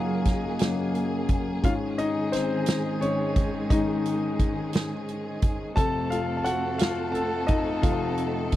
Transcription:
Already playing: F#2 C#3 F#3 A#3 C#4 D#4 F4 F#4 G#4 C#5 D#5 F5 F#5
0.25 kick, snare, closed hi-hat
0.59 F#2 C#3 A#3, snare, closed hi-hat
0.95 closed hi-hat
1.29 kick, closed hi-hat
1.63 G#2 D#3 G#3 C#4 F4 F5, kick, closed hi-hat
1.98 D#4 D#5, closed hi-hat
2.32 C4 C5, snare, closed hi-hat
2.66 snare, closed hi-hat
3.01 G#2 D#3 C#4 C#5, closed hi-hat
3.36 kick, closed hi-hat
3.70 G#2 D#3 C#4 D#4 D#5, kick, closed hi-hat
4.06 closed hi-hat
4.39 kick, closed hi-hat
4.73 snare, closed hi-hat
5.09 closed hi-hat
5.42 kick, closed hi-hat
5.76 F2 C3 A3 C4 A4 A5, kick, closed hi-hat
6.10 F4 F5, closed hi-hat
6.37 A5
6.44 F#4 F#5, closed hi-hat
6.78 F4 F5, snare, closed hi-hat
7.12 A4 A5, closed hi-hat
7.47 D#4 D#5, kick, closed hi-hat
7.82 F2 C3 A3 F4 F5, kick, closed hi-hat
8.18 closed hi-hat
8.52 kick, closed hi-hat

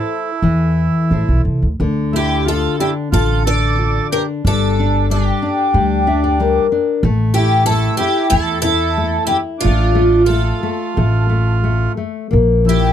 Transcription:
Already playing: E4 A4 C5
0.42 E2 E3
1.11 A1 E4 A4 C5
1.29 B1
1.45 C2
1.62 D2
1.80 D2 D3
2.13 A3 E4 G4
2.45 F4 A4
2.79 D4 E4 G4
3.12 A1 F4 A4
3.45 D4 A4 D5
3.79 F4
4.12 D4 G4 A#4
4.45 G1 G3 D4 A4
4.79 D4
5.10 G3 D4 G4
5.42 D4
5.74 D2 G3
6.07 D4 E5
6.24 D5
6.40 G3 A#4
6.72 D4
7.03 A1 A3
7.34 E4 G4
7.64 A3 E4 A4
7.97 E4 G4
8.28 E2 A3 E4 A4
8.60 E4 A4
8.64 E4
8.97 A3
9.24 E4 G4
9.31 E4
9.58 D4 F4
9.64 A1 A3
9.95 A3
10.24 F4 A4
10.29 A3
10.63 A3
10.97 A1 A3
11.29 A3
11.64 A3
11.97 A3
12.31 A#1 A#3
12.65 F3 E4
12.69 G4

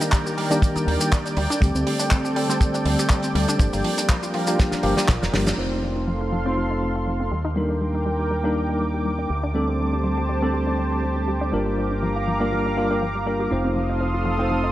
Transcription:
Already playing: D#3 G3 A#3 D4 G4 A#4 D5 G5
0.01 D#4, closed hi-hat, shaker
0.12 G3, kick, clap, closed hi-hat, shaker
0.26 G4, shaker
0.38 G3, open hi-hat
0.50 D#3 G3 A#3 D4 G4, closed hi-hat, shaker
0.62 G3, kick, closed hi-hat, shaker
0.76 D#4, muted fingered electric bass stroke, closed hi-hat, shaker
0.87 D#2 G3, open hi-hat
1.01 G4, closed hi-hat, shaker
1.12 G3, kick, clap, closed hi-hat, shaker
1.25 D4, closed hi-hat, shaker
1.37 D2 G3 C4 A4, open hi-hat
1.50 D4, closed hi-hat, shaker
1.60 D2 D3 G3 A3 C4 G4, kick, closed hi-hat, shaker
1.75 D2 C4, shaker
1.87 G3, open hi-hat
1.99 D4, closed hi-hat, shaker
2.11 G3, kick, clap, closed hi-hat, shaker
2.25 G4, shaker
2.36 G3, open hi-hat
2.48 D3 G3 A3 C4 G4, closed hi-hat, shaker
2.61 G3, kick, closed hi-hat, shaker
2.74 D4, closed hi-hat, shaker
2.85 D2 G3, open hi-hat
2.99 G4, closed hi-hat, shaker
3.09 G3, kick, clap, closed hi-hat, shaker
3.23 C4, closed hi-hat, shaker
3.35 D2 G3, open hi-hat
3.48 D4, closed hi-hat, shaker
3.58 G1 F3 G3 A#3 D4 F4 G4 A#4, kick, closed hi-hat, shaker
3.73 G1 A#3, open hi-hat, shaker
3.84 F3, open hi-hat
3.98 D4, closed hi-hat, shaker
4.09 F3, kick, clap, closed hi-hat, shaker
4.23 F4, closed hi-hat, shaker
4.34 F3, open hi-hat
4.47 F3 G3 A#3 D4 G4, closed hi-hat, shaker
4.59 F3, kick, snare, closed hi-hat, shaker
4.72 D4, muted fingered electric bass stroke, snare, closed hi-hat, shaker
4.83 G1 F3 G3 A#3 D4 F4 G4, open hi-hat
4.96 F3 G3 A#3 D4 F4 G4, snare, closed hi-hat, shaker
5.08 A#1 F3, kick, snare, clap, closed hi-hat, shaker
5.22 F1 F4, snare, closed hi-hat, shaker
5.33 G1 F3 G3 A#3 D4 G4, snare, open hi-hat
5.46 D4, snare, closed hi-hat, shaker
5.57 F1 F3 A3 C4 D#4 F4 A4 C5 F5 C6
5.71 C4
5.83 F3
5.96 D#4
6.07 F3
6.21 F4
6.32 F3
6.45 A3 C4 D#4 F4 C5
6.57 F3
6.71 D#4
6.82 F3
6.95 F4
7.07 F3
7.20 C4
7.31 D#2 G3 A#4 G5 D6
7.45 D#4
7.55 G3 A#3 D4 D#4 A#4
7.70 D4
7.81 G3
7.95 D#4
8.06 G3
8.20 G4
8.31 G3
8.43 G3 A#3 D4 D#4 A#4
8.56 G3
8.69 D#4
8.81 G3
8.94 G4
9.05 G3
9.19 D4
9.30 D2 G3 G4 C5 A5
9.44 D4
9.53 G3 A3 C4 D4 A4
9.68 C4
9.80 G3
9.93 D4
10.04 G3
10.18 G4
10.29 G3
10.41 G3 A3 C4 D4 A4
10.54 G3
10.67 D4
10.79 G3
10.92 G4
11.03 G3
11.16 C4
11.28 G3
11.41 D4
11.52 G1 F3 G3 A#3 D4 F4 A#4 F5 A#5 D6
11.66 A#3
11.78 F3
11.91 D4
12.03 F3
12.16 F4
12.28 F3
12.40 G3 A#3 D4 F4 A#4
12.52 F3
12.66 D4
12.77 G3 A#3 D4 F4 A#4
12.90 G3 A#3 D4 F4 A#4
13.02 F3
13.15 G3
13.26 G3 A#3 D4 F4 A#4
13.40 G4
13.50 F1 F3 A3 C4 D#4 F4 A4 C5 F5 C6 D#6
13.64 C4
13.76 F3
13.89 D#4
14.01 F3
14.14 F4
14.26 F3
14.38 A3 C4 D#4 F4 C5
14.50 F3
14.64 D#4

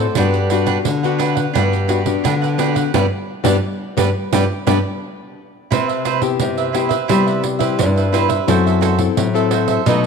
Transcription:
Already playing: A2 D5
0.00 A4 C5
0.15 G2 G3 B3 D4 F#4 G4 B4 F#5, pandeiro
0.34 pandeiro
0.49 B3 D4 F#4 G4 B4 F#5, pandeiro
0.66 D4 G4 B4 F#5, pandeiro
0.85 D3, pandeiro
1.03 B3 D4 F#4 G4 B4 F#5, pandeiro
1.18 D4 G4 B4 F#5, pandeiro
1.35 G4 B4 F#5, pandeiro
1.53 G2 G3 B3 D4 F#4 G4 B4 F#5, pandeiro
1.73 pandeiro
1.88 B3 D4 F#4 G4 B4 F#5, pandeiro
2.06 B3 D4 F#4, pandeiro
2.24 D3 D4 G4 B4 F#5, pandeiro
2.42 G4 B4 F#5, pandeiro
2.58 B3 D4 F#4 G4 B4 F#5, pandeiro
2.75 G4 B4 F#5, pandeiro
2.94 G2 G3 B3 D4 G4 B4 D5, pandeiro
3.44 G2 G3 B3 D4 G4 B4 D5, pandeiro
3.97 G2 G3 B3 D4 G4 B4 D5, pandeiro
4.33 G2 G3 B3 D4 G4 B4 D5, pandeiro
4.67 G2 G3 B3 D4 G4 B4 D5, pandeiro
5.71 C3 E4 B4 C5 E5, pandeiro
5.88 B4 C5 E5, pandeiro
6.05 E4 B4 C5 E5, pandeiro
6.21 B3 E4 G4, muted cavaquinho stroke, pandeiro
6.39 G2 C3, pandeiro
6.57 B4 C5 E5, pandeiro
6.73 B3 E4 G4 B4 C5 E5, pandeiro
6.89 B4 C5 E5, pandeiro
7.08 C3 G3 B3 E4 G4 B4 C5 E5, pandeiro
7.26 B4 C5 E5, pandeiro
7.42 muted cavaquinho stroke, pandeiro
7.59 E4 G4 B4 C5 E5, pandeiro
7.79 G2, pandeiro
7.96 B4 C5 E5, pandeiro
8.12 B3 E4 G4 B4 C5 E5, pandeiro
8.29 B4 C5 E5, pandeiro
8.47 F#2 F#3 C4 E4 F#4 A4 C5 E5, pandeiro
8.66 A4 C5 E5, pandeiro
8.81 F#4 A4 C5 E5, pandeiro
8.98 C4 E4 A4, muted cavaquinho stroke, pandeiro
9.17 A2 F#3, pandeiro
9.34 C4 E4 A4 C5 E5, pandeiro
9.51 F#4 A4 C5 E5, pandeiro
9.68 A4 C5 E5, pandeiro
9.86 B2 F#3 A3 D#4 A4 B4 D#5, pandeiro

